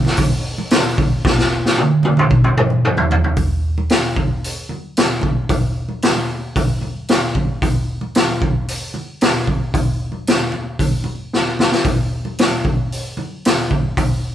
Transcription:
0.05 snare, low conga
0.17 kick, open hi-hat
0.58 high conga
0.70 snare, open hi-hat
0.97 kick, low conga
1.25 kick, snare
1.38 snare
1.66 snare
1.78 high tom
2.03 high tom, high conga, low conga
2.17 mid tom, low conga
2.30 kick, high conga
2.44 mid tom
2.57 mid tom, high conga
2.70 high conga
2.85 mid tom
2.97 floor tom, high conga
3.11 floor tom, low conga
3.24 floor tom
3.36 kick, open hi-hat
3.78 high conga
3.90 snare, open hi-hat
4.16 kick, low conga
4.44 open hi-hat
4.69 high conga, low conga
4.97 snare, open hi-hat
5.21 kick, high conga, low conga
5.49 kick, open hi-hat
5.89 high conga
6.02 snare, open hi-hat
6.15 high conga
6.56 kick, open hi-hat
6.81 high conga, low conga
7.08 snare, open hi-hat
7.35 kick, high conga, low conga
7.62 kick, open hi-hat
8.01 high conga
8.15 snare, open hi-hat
8.28 high conga
8.41 kick, low conga
8.68 open hi-hat
8.94 high conga, low conga
9.21 snare, open hi-hat
9.47 kick, high conga, low conga
9.74 kick, open hi-hat
10.12 high conga
10.27 snare, open hi-hat
10.41 high conga
10.52 low conga
10.79 kick, open hi-hat
11.04 high conga, low conga
11.33 snare
11.59 snare, high conga, low conga
11.72 snare
11.85 kick, open hi-hat
12.25 high conga
12.38 snare, open hi-hat
12.52 high conga
12.64 kick, low conga
12.92 open hi-hat
13.17 high conga, low conga
13.45 snare, open hi-hat
13.70 kick, high conga, low conga
13.97 kick, open hi-hat

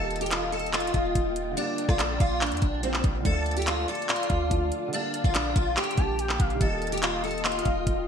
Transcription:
Already playing: D#1 D#3 G3 A#3 F4 A4 D#5 G5
0.11 closed hi-hat
0.16 closed hi-hat
0.21 G4, closed hi-hat
0.26 closed hi-hat
0.31 F4, clap, closed hi-hat
0.52 A4, closed hi-hat
0.59 closed hi-hat
0.66 closed hi-hat
0.73 F4, clap, closed hi-hat
0.80 closed hi-hat
0.87 closed hi-hat
0.94 D#1, kick, closed hi-hat
1.15 D#1, kick, closed hi-hat
1.36 closed hi-hat
1.51 D3 G3
1.57 A#3 D4 D5, closed hi-hat
1.63 F4
1.78 closed hi-hat
1.89 A#1 F4, kick, cross-stick
1.99 D4, cross-stick, clap, closed hi-hat
2.20 A#1 F4, kick, closed hi-hat
2.41 D4, clap, closed hi-hat
2.47 closed hi-hat
2.52 F2, closed hi-hat
2.57 closed hi-hat
2.62 A#1, kick, closed hi-hat
2.81 D3 G3 A#3 C4, closed hi-hat
2.86 F4
2.94 clap
3.04 A#1, kick, closed hi-hat
3.19 D3 F3
3.25 D2 A3 A4 D5 A5, kick, closed hi-hat
3.31 F4
3.46 closed hi-hat
3.51 closed hi-hat
3.57 G4, closed hi-hat
3.62 closed hi-hat
3.67 F4, clap, closed hi-hat
3.88 A4, closed hi-hat
3.95 closed hi-hat
4.02 closed hi-hat
4.09 F4, clap, closed hi-hat
4.16 closed hi-hat
4.23 closed hi-hat
4.30 D2, kick, closed hi-hat
4.48 D2 D3 F3 A3, kick, closed hi-hat
4.54 F4
4.72 closed hi-hat
4.88 D3 G3
4.93 A#3 D4 F5 G5, closed hi-hat
4.99 F4
5.14 closed hi-hat
5.24 A#1 F4, kick
5.35 D4, clap, closed hi-hat
5.56 A#1 F4, kick, closed hi-hat
5.77 G4, clap, closed hi-hat
5.84 closed hi-hat
5.91 closed hi-hat
5.95 A#1 D3 G3 A#3 A5, kick, closed hi-hat
6.01 F4
6.19 G5, closed hi-hat
6.29 clap
6.40 A#1 F5, kick, closed hi-hat, open hi-hat
6.50 closed hi-hat
6.55 D#3 G3
6.61 D#1 A#3 F4 A4 D#5, kick, closed hi-hat
6.66 F4
6.82 closed hi-hat
6.87 closed hi-hat
6.92 G4, closed hi-hat
6.98 closed hi-hat
7.02 F4, clap, closed hi-hat
7.24 A4, closed hi-hat
7.31 closed hi-hat
7.38 closed hi-hat
7.45 F4, clap, closed hi-hat
7.52 closed hi-hat
7.59 closed hi-hat
7.65 D#1, kick, closed hi-hat
7.87 D#1, kick, closed hi-hat

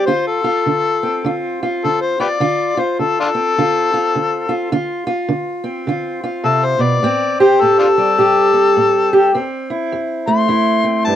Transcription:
Already playing: C4
0.06 D3 F4 C5
0.27 A4
0.44 F4
0.66 D3
1.03 C4
1.24 D3 F4
1.63 F4
1.84 D3 A4
2.01 C5
2.20 F4 G4 B4 D5
2.40 D3 F4
2.77 F4 C5
2.99 D3 A4
3.20 D4 F4 A4
3.35 C4
3.58 D3 F4
3.94 F4
4.15 D3
4.49 F4
4.72 D3 F4
5.07 F4
5.29 D3
5.64 C4
5.87 D3 F4
6.24 F4
6.44 C3 A4
6.64 C5
6.78 B2 D5
7.03 A2 C4
7.40 G4 C5
7.61 A2 A4
7.79 D4 F4 A4
7.98 G3
8.18 A2 G4
8.53 C4
8.77 A2
9.13 G4
9.34 F2 C4
9.70 E4
9.92 F2
10.28 A3 C6
10.48 F2 E4
10.84 C4
11.05 G2 A5

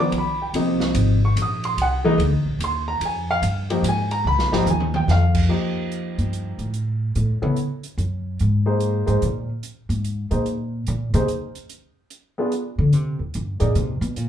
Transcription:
Already playing: D#2
0.00 D#3 F3 B3 D4 D6
0.12 B1, ride
0.18 B5
0.42 G5
0.53 C2 C3 F3 A#3 D#4, ride
0.80 snare
0.94 G#1, hi-hat pedal, ride
1.25 C#6
1.36 A#1, hi-hat pedal, ride
1.42 D#6
1.64 C6, ride
1.77 C2, ride
1.82 F#5
2.04 E3 G#3 A#3 D#4
2.18 D2, ride
2.32 C2
2.46 A#1
2.59 D#2, hi-hat pedal, ride
2.64 C6
2.88 A#5
3.00 F2, ride
3.05 G#5
3.31 F5
3.42 G2, hi-hat pedal, ride
3.70 F3 A#3 D#4 G4, ride
3.83 G#2, hi-hat pedal, ride
3.89 G#5
4.11 A#5, ride
4.25 C#2 B5
4.39 B1, snare
4.52 G#1 F3 A#3 D#4 G4 A#5, snare
4.66 D#2, hi-hat pedal, mid tom
4.70 G#5
4.80 mid tom
4.94 G5, mid tom
5.08 F2 F5, snare
5.35 kick, crash
5.49 F3 A#3 D#4 G4
5.92 closed hi-hat
6.18 G2, closed hi-hat
6.33 closed hi-hat
6.58 A2, closed hi-hat
6.74 closed hi-hat
7.15 A2, closed hi-hat
7.42 C#3 B3 E4 A4 C#5
7.56 closed hi-hat
7.83 closed hi-hat
7.98 F#2, closed hi-hat
8.39 G#2, closed hi-hat
8.66 A#3 D#4 G#4 C5
8.80 closed hi-hat
9.06 G#2 A#3 D#4 G#4 C5, closed hi-hat
9.22 A#2, closed hi-hat
9.63 closed hi-hat
9.89 G#2, closed hi-hat
10.04 closed hi-hat
10.31 A#2 A#3 D#4 G#4 C5, closed hi-hat
10.46 closed hi-hat
10.87 A#2, closed hi-hat
11.14 C3 A#3 D#4 G#4 C5, closed hi-hat
11.28 closed hi-hat
11.55 closed hi-hat
11.69 closed hi-hat
12.10 closed hi-hat
12.38 B3 D4 F4 G#4
12.52 closed hi-hat
12.78 D3
12.93 C3, closed hi-hat
13.19 D#2
13.34 G2, closed hi-hat
13.60 A#2 A#3 D#4 G#4 D5, closed hi-hat
13.75 C3, closed hi-hat
14.01 B2, closed hi-hat
14.16 A#2, closed hi-hat

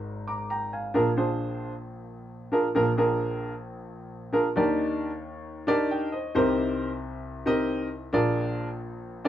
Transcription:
Already playing: G#1 G#2
0.28 A#5 D6
0.50 G5 A#5
0.73 F5 G#5
0.94 A#1 A#2 D4 F4 G#4 A#4
1.17 D4 F4 G#4 C5
2.52 D4 F4 G#4 A#4
2.75 A#1 A#2 D4 F4 G#4 A#4
2.97 D4 F4 G#4 A#4
4.33 D4 F4 G#4 A#4
4.56 D#2 D#3 D4 D#4 G4 A#4 D5
5.67 D4 D#4 G4 A#4 D5
5.91 D#5 G5
6.12 C5 D#5
6.35 C2 C3 C4 D#4 G4 A#4 C5
7.46 C4 D#4 G4 A#4 D#5
8.13 A#1 A#2 D4 F4 G#4 A#4 D5
9.25 D4 F4

